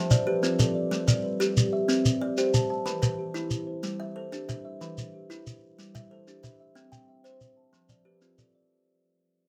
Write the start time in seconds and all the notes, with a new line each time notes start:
Already playing: F3 A5
0.11 D5, shekere
0.27 G4 B4
0.43 C4 F4, shekere
0.59 A4 D5, shekere
0.75 D5
0.91 G3, shekere
1.08 D5, shekere
1.24 B4
1.40 G4, shekere
1.57 shekere
1.73 E5
1.88 C4, shekere
2.05 shekere
2.21 D5
2.38 G4 C5, shekere
2.54 A5, shekere
2.70 A5
2.86 E3 B4, shekere
3.02 B4, shekere
3.18 G4
3.34 E4, shekere
3.51 shekere
3.67 C5
3.83 G3, shekere
4.00 E5
4.16 A4 C5
4.32 D4 G4, shekere
4.48 B4 E5, shekere
4.65 E5
4.81 E3 B4, shekere
4.98 shekere
5.14 G4
5.30 E4, shekere
5.47 shekere
5.78 G3, shekere
5.95 E5, shekere
6.11 A4 C5
6.27 D4 G4, shekere
6.43 B4 E5, shekere
6.60 E5
6.75 C4 G5, shekere
6.92 G5, shekere
7.09 E5
7.24 C5, shekere
7.41 shekere
7.57 A5
7.73 F3, shekere
7.89 D5, shekere
8.05 G4 B4
8.22 C4 F4, shekere
8.38 A4 D5, shekere
8.55 D5